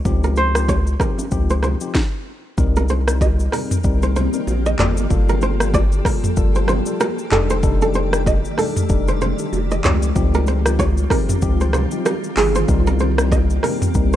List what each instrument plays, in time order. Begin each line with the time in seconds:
0.05 analog synth bass C#2, tine electric piano F3 C4 D#4 G4, kick, low conga, shaker
0.23 kora A#4, high bongo, low bongo, shaker
0.36 kora C5, low bongo, shaker
0.55 tine electric piano F3 C4 D#4 G4, cross-stick, shaker
0.68 kora C#5, kick, high bongo, shaker
0.87 shaker
1.00 tine electric piano F3 C4 D#4 G4, kora A#4, kick, cross-stick, low conga, shaker
1.19 low bongo, shaker
1.31 analog synth bass C#2, tine electric piano F3 C4 D#4 G4, kick, shaker
1.50 kora C5, shaker
1.63 kora C5, cross-stick, low bongo, low conga, shaker
1.81 tine electric piano F3 C4 D#4 G4, shaker
1.95 kick, snare
2.57 analog synth bass C2, ambient pad D#3 A#3 C4 G4, tine electric piano G3 C4 D#4 A#4, kick, low conga, shaker
2.76 kora A#4, high bongo, low bongo, shaker
2.89 kora C5, low bongo, shaker
3.07 tine electric piano G3 C4 D#4 A#4, cross-stick, shaker
3.21 kora D#5, kick, high bongo, shaker
3.39 shaker
3.52 tine electric piano G3 C4 D#4 A#4, kora A#4, cross-stick, open hi-hat, low conga, shaker
3.71 mid tom, shaker
3.84 analog synth bass C2, tine electric piano G3 C4 D#4 A#4, kick, shaker
4.02 kora C5, shaker
4.16 kora C5, low bongo, low conga, shaker
4.33 tine electric piano G3 C4 D#4 A#4, shaker
4.47 analog synth bass A#1, high bongo, shaker
4.66 kora D#5, shaker
4.79 analog synth bass G1, ambient pad F3 A4, tine electric piano G3 A#3 F4 A4, kora D5, clap, mid tom, high bongo, shaker
4.97 shaker
5.10 analog synth bass G1, tine electric piano G3 A#3 F4 A4, kick, low conga, shaker
5.29 kora A#4, high bongo, low bongo, shaker
5.41 kora C5, low bongo, shaker
5.60 tine electric piano G3 A#3 F4 A4, cross-stick, shaker
5.74 kora D5, kick, high bongo, shaker
5.92 shaker
6.05 tine electric piano G3 A#3 F4 A4, kora A#4, kick, cross-stick, open hi-hat, low conga, shaker
6.24 mid tom, shaker
6.36 analog synth bass G1, tine electric piano G3 A#3 F4 A4, kick, shaker
6.55 kora C5, shaker
6.68 kora C5, cross-stick, low bongo, low conga, shaker
6.86 tine electric piano G3 A#3 F4 A4, shaker
7.00 kora A#4, cross-stick, high bongo, shaker
7.18 shaker
7.31 analog synth bass F1, ambient pad D#3 A3 D5, tine electric piano G3 D4 D#4 A4, kora A4, clap, mid tom, high bongo, shaker
7.50 kora C5, shaker
7.63 tine electric piano G3 D4 D#4 A4, kick, low conga, shaker
7.81 kora A4, high bongo, low bongo, shaker
7.94 kora C5, low bongo, shaker
8.13 tine electric piano G3 D4 D#4 A4, cross-stick, shaker
8.26 kora D#5, kick, high bongo, shaker
8.45 shaker
8.58 tine electric piano G3 D4 D#4 A4, kora A4, cross-stick, open hi-hat, low conga, shaker
8.77 mid tom, shaker
8.89 analog synth bass F1, tine electric piano G3 D4 D#4 A4, kick, shaker
9.08 kora C5, shaker
9.21 kora C5, low bongo, low conga, shaker
9.39 tine electric piano G3 D4 D#4 A4, shaker
9.53 analog synth bass F1, high bongo, shaker
9.71 kora D#5, shaker
9.84 analog synth bass C#2, ambient pad D#3 G3 C4 F4, tine electric piano F3 C4 D#4 G4, kora C#5, clap, mid tom, high bongo, shaker
10.03 shaker
10.15 analog synth bass C#2, tine electric piano F3 C4 D#4 G4, kick, low conga, shaker
10.34 kora A#4, high bongo, low bongo, shaker
10.47 kora C5, low bongo, shaker
10.65 tine electric piano F3 C4 D#4 G4, cross-stick, shaker
10.79 kora C#5, kick, high bongo, shaker
10.97 shaker
11.10 tine electric piano F3 C4 D#4 G4, kora A#4, kick, cross-stick, open hi-hat, low conga, shaker
11.29 mid tom, low bongo, shaker
11.42 analog synth bass C#2, tine electric piano F3 C4 D#4 G4, kick, shaker
11.60 kora C5, shaker
11.73 kora C5, cross-stick, low bongo, low conga, shaker
11.91 tine electric piano F3 C4 D#4 G4, shaker
12.05 kora A#4, cross-stick, high bongo, shaker
12.24 shaker
12.36 analog synth bass G1, tine electric piano F3 C4 D#4 G4, kora G#4, clap, open hi-hat, high bongo, shaker
12.55 kora C5, shaker
12.68 analog synth bass C2, tine electric piano G3 C4 D#4 A#4, ambient pad A#3 G4, kick, low conga, shaker
12.87 kora A#4, high bongo, low bongo, shaker
12.99 kora C5, low bongo, shaker
13.18 tine electric piano G3 C4 D#4 A#4, cross-stick, shaker
13.32 kora D#5, kick, high bongo, shaker
13.50 shaker
13.63 tine electric piano G3 C4 D#4 A#4, kora A#4, cross-stick, open hi-hat, low conga, shaker
13.82 mid tom, shaker
13.94 analog synth bass C2, tine electric piano G3 C4 D#4 A#4, kick, shaker